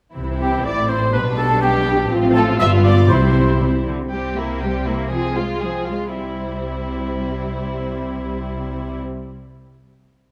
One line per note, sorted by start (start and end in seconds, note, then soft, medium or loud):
0.14 0.62 C2 soft
0.14 0.62 C3 soft
0.14 1.10 E3 soft
0.14 1.10 C4 soft
0.14 1.09 E4 soft
0.39 0.48 C4 soft
0.39 0.49 E4 soft
0.39 0.64 G4 soft
0.39 0.66 G4 soft
0.39 0.63 G5 medium
0.64 1.15 A1 soft
0.64 1.14 A2 soft
0.64 0.90 D5 medium
0.64 0.89 D5 medium
0.64 0.89 D6 medium
0.88 0.98 C4 soft
0.88 0.97 E4 soft
0.88 1.12 C5 soft
0.88 1.14 C5 soft
0.88 1.14 C6 medium
1.13 2.12 B1 medium
1.13 2.11 B2 medium
1.13 2.07 G3 soft
1.13 2.07 B3 soft
1.13 2.07 D4 soft
1.13 1.24 B4 medium
1.13 1.40 B4 medium
1.13 1.21 B5 medium
1.36 1.47 D4 medium
1.36 1.47 G4 medium
1.36 1.61 A4 medium
1.36 1.63 A4 medium
1.36 1.61 A5 medium
1.62 2.10 G4 medium
1.62 2.11 G4 medium
1.62 2.11 G5 medium
1.86 1.95 D4 medium
1.86 1.95 G4 medium
2.10 2.59 A1 medium
2.10 2.59 A2 medium
2.10 2.56 F3 medium
2.10 2.56 C4 medium
2.10 2.56 F4 medium
2.10 3.07 F4 medium
2.34 2.58 A4 medium
2.34 2.44 A4 medium
2.34 2.40 A5 medium
2.59 3.10 G1 medium
2.59 3.10 G2 medium
2.59 3.87 G3 medium
2.59 3.06 B3 medium
2.59 3.09 B3 medium
2.59 3.09 F4 medium
2.59 2.71 E5 medium
2.59 2.69 E5 medium
2.59 2.65 E6 medium
2.83 2.95 D5 medium
2.83 3.09 D5 medium
2.83 3.10 D6 medium
3.09 3.91 C2 medium
3.09 3.82 C3 medium
3.09 3.56 C3 medium
3.09 3.86 C4 medium
3.09 3.87 C4 soft
3.09 3.86 E4 medium
3.09 3.87 E4 soft
3.09 3.59 C5 medium
3.09 3.62 C5 soft
3.09 3.61 C6 medium
3.61 3.69 C3 medium
3.86 4.11 D3 medium
4.12 5.90 C2 soft
4.12 5.90 C3 soft
4.12 4.35 G3 soft
4.12 4.36 C4 soft
4.12 4.36 G4 soft
4.37 4.62 A#3 soft
4.37 4.63 A#3 soft
4.37 4.62 E4 soft
4.61 4.87 G3 soft
4.61 4.88 C4 soft
4.61 4.86 G4 soft
4.86 5.12 A#3 soft
4.86 5.13 A#3 soft
4.86 5.11 E4 soft
5.11 5.35 F3 soft
5.11 5.36 C4 soft
5.11 5.35 G#4 soft
5.36 5.63 G#3 soft
5.36 5.62 F4 soft
5.36 5.63 F4 soft
5.61 5.89 F3 soft
5.61 5.88 G#4 soft
5.65 5.90 C4 soft
5.88 6.15 G#3 soft
5.88 6.14 F4 soft
5.88 6.16 F4 soft
6.14 9.00 C2 soft
6.14 8.99 C3 soft
6.14 9.00 G3 soft
6.14 9.00 C4 soft
6.14 8.99 E4 soft